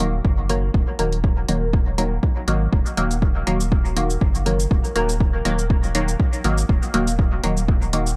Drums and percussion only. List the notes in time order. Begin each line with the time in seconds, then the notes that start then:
0.00 closed hi-hat
0.25 kick
0.49 closed hi-hat
0.74 kick
0.99 closed hi-hat
1.12 closed hi-hat
1.24 kick
1.49 closed hi-hat
1.73 kick
1.98 closed hi-hat
2.23 kick
2.48 closed hi-hat
2.73 kick
2.86 shaker
2.97 closed hi-hat
3.11 closed hi-hat, shaker
3.22 kick
3.47 closed hi-hat
3.60 shaker
3.72 kick
3.85 shaker
3.97 closed hi-hat
4.10 shaker
4.21 kick
4.35 shaker
4.46 closed hi-hat
4.60 shaker
4.71 kick
4.84 shaker
4.96 closed hi-hat
5.09 closed hi-hat, shaker
5.20 kick
5.45 closed hi-hat
5.59 shaker
5.70 kick
5.84 shaker
5.95 closed hi-hat
6.08 shaker
6.20 kick
6.33 shaker
6.44 closed hi-hat
6.58 shaker
6.69 kick
6.83 shaker
6.94 closed hi-hat
7.07 closed hi-hat, shaker
7.19 kick
7.44 closed hi-hat
7.57 shaker
7.68 kick
7.82 shaker
7.93 closed hi-hat
8.07 shaker